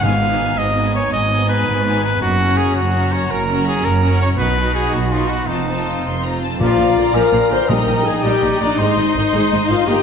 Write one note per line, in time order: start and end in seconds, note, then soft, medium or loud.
0.02 0.52 G#1 medium
0.02 0.51 G#2 medium
0.02 0.54 G#2 medium
0.02 0.19 B3 medium
0.02 0.19 D#4 medium
0.02 0.59 F5 loud
0.02 0.21 G#5 medium
0.20 0.74 B3 medium
0.20 0.74 D#4 medium
0.20 0.75 G#5 medium
0.57 1.05 G#1 medium
0.57 1.05 G#2 medium
0.57 0.93 D#5 medium
0.75 1.27 B3 soft
0.75 1.29 D#4 medium
0.75 1.29 G#5 medium
0.94 1.12 C#5 medium
1.12 1.60 G#1 medium
1.12 1.60 G#2 medium
1.12 1.48 D#5 medium
1.29 1.83 B3 medium
1.29 1.83 D#4 medium
1.29 1.83 G#5 medium
1.49 2.02 B4 medium
1.66 2.14 G#1 medium
1.66 2.14 G#2 medium
1.84 2.20 B3 medium
1.84 2.20 D#4 medium
1.84 2.20 G#5 medium
2.04 2.21 B4 medium
2.20 2.69 F#1 medium
2.20 2.69 F#2 medium
2.20 2.59 F#4 medium
2.38 2.91 C#4 medium
2.38 2.92 F#4 soft
2.38 2.93 A#5 medium
2.57 2.75 G#4 medium
2.75 3.23 F#1 medium
2.75 3.23 F#2 medium
2.75 3.14 F#4 medium
2.92 3.46 C#4 medium
2.92 3.47 F#4 medium
2.92 3.47 A#5 medium
3.13 3.32 C#5 medium
3.29 3.77 F#1 medium
3.29 3.77 F#2 medium
3.29 3.66 A#4 medium
3.48 4.01 C#4 medium
3.48 4.01 F#4 medium
3.48 4.01 A#5 medium
3.67 3.86 G#4 medium
3.83 4.32 F#1 medium
3.83 4.32 F#2 medium
3.83 4.21 A#4 medium
4.02 4.38 C#4 medium
4.02 4.37 F#4 medium
4.02 4.38 A#5 medium
4.21 4.29 C#5 medium
4.37 4.87 B1 medium
4.37 4.86 B2 medium
4.37 4.56 D#4 soft
4.37 4.55 F#4 medium
4.37 4.74 B4 medium
4.37 4.56 B5 medium
4.56 5.10 D#4 medium
4.56 5.10 F#4 medium
4.56 5.11 B5 medium
4.75 4.95 G#4 medium
4.93 5.42 B1 medium
4.93 5.42 B2 medium
4.93 5.13 F#4 medium
5.11 5.48 D#4 soft
5.11 5.31 F4 medium
5.11 5.48 F#4 medium
5.11 5.48 B5 soft
5.30 5.49 F#4 medium
5.47 5.98 F1 medium
5.47 5.98 F2 medium
5.47 5.66 C4 medium
5.47 6.41 D#4 medium
5.47 5.67 F4 soft
5.47 5.67 A5 medium
5.67 6.21 C4 soft
5.67 6.23 F4 medium
5.67 6.01 A5 medium
6.04 6.53 F1 medium
6.04 6.54 F2 medium
6.04 6.23 C6 medium
6.22 6.59 C4 soft
6.22 6.60 F4 soft
6.22 6.42 A#5 medium
6.43 6.60 A5 medium
6.59 6.67 A#1 medium
6.59 6.66 A#2 medium
6.59 7.11 A#2 medium
6.59 6.77 F3 medium
6.59 7.11 F4 medium
6.59 7.65 F4 medium
6.59 7.12 F4 medium
6.59 7.17 D5 medium
6.59 7.12 F5 medium
6.59 7.11 A#5 medium
6.59 8.76 A#5 medium
6.63 7.67 D5 medium
6.77 6.85 A#1 medium
6.77 6.85 A#2 medium
6.77 6.85 F3 soft
6.96 7.03 A#1 medium
6.96 7.03 A#2 medium
6.96 7.04 D3 soft
7.13 7.21 A#1 medium
7.13 7.21 A#2 medium
7.13 7.30 F3 medium
7.13 7.53 A#4 medium
7.13 7.51 A#4 medium
7.13 7.70 F5 medium
7.13 7.69 G#5 medium
7.13 7.51 A#5 medium
7.31 7.40 A#1 medium
7.31 7.40 A#2 medium
7.31 7.39 F3 soft
7.49 7.58 A#1 medium
7.49 7.57 A#2 soft
7.49 7.57 D3 soft
7.49 7.69 C5 medium
7.49 7.71 C5 medium
7.49 7.69 C6 medium
7.67 7.77 A#1 medium
7.67 7.76 A#2 medium
7.67 8.20 A#2 medium
7.67 7.86 G3 medium
7.67 10.03 D#4 medium
7.67 8.05 A#4 medium
7.67 8.07 A#4 medium
7.67 8.24 D#5 medium
7.67 10.03 D#5 medium
7.67 8.23 G5 medium
7.67 8.05 A#5 medium
7.86 7.94 A#1 medium
7.86 7.94 A#2 soft
7.86 7.94 G3 soft
8.03 8.12 A#1 soft
8.03 8.12 A#2 medium
8.03 8.13 D#3 medium
8.03 8.12 G#4 medium
8.03 8.24 G#4 medium
8.03 8.13 G#5 medium
8.22 8.30 A#1 medium
8.22 8.31 A#2 medium
8.22 8.40 G3 medium
8.22 8.59 G4 medium
8.22 8.63 G4 medium
8.22 8.80 D5 medium
8.22 8.60 G5 medium
8.22 8.79 A#5 medium
8.41 8.50 A#1 soft
8.41 8.49 A#2 medium
8.41 8.49 G3 soft
8.60 8.68 A#1 soft
8.60 8.68 A#2 medium
8.60 8.68 D#3 soft
8.60 8.78 D4 medium
8.60 8.80 D4 medium
8.60 8.78 D5 medium
8.78 8.86 G#1 medium
8.78 8.85 G#2 medium
8.78 8.96 G#3 medium
8.78 9.15 D#4 medium
8.78 9.14 D#4 medium
8.78 9.90 C5 medium
8.78 9.14 D#5 medium
8.78 9.85 C6 medium
8.78 9.33 C6 medium
8.97 9.04 G#1 medium
8.97 9.04 G#2 soft
8.97 9.05 G#3 soft
9.15 9.22 G#1 medium
9.15 9.22 G#2 medium
9.15 9.23 D#3 soft
9.15 9.69 D#4 medium
9.15 9.69 D#5 medium
9.32 9.40 G#1 medium
9.32 9.40 G#2 medium
9.32 9.50 G#3 medium
9.32 9.87 C6 medium
9.50 9.59 G#1 medium
9.50 9.58 G#2 medium
9.50 9.59 G#3 soft
9.67 9.77 G#1 soft
9.67 9.75 G#2 soft
9.67 9.77 D#3 medium
9.67 9.89 F4 medium
9.67 9.88 F4 medium
9.67 9.88 F5 medium
9.86 9.94 G1 medium
9.86 9.93 G2 medium
9.86 10.03 A#3 medium
9.86 10.03 G4 medium
9.86 10.03 D#5 medium
9.86 10.03 G5 medium
9.86 10.03 A#5 medium